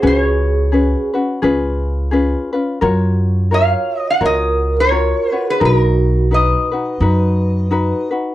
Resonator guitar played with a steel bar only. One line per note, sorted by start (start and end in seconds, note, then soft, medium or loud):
0.07 0.18 C5 medium
0.18 1.12 C#5 medium
3.54 3.99 F5 medium
3.99 4.10 D#5 medium
4.10 4.24 F#5 medium
4.25 4.80 D#5 loud
4.80 5.33 C#5 loud
5.33 5.50 B4 loud
5.50 5.64 B4 medium
5.65 6.29 A#4 medium
6.34 8.09 D#5 medium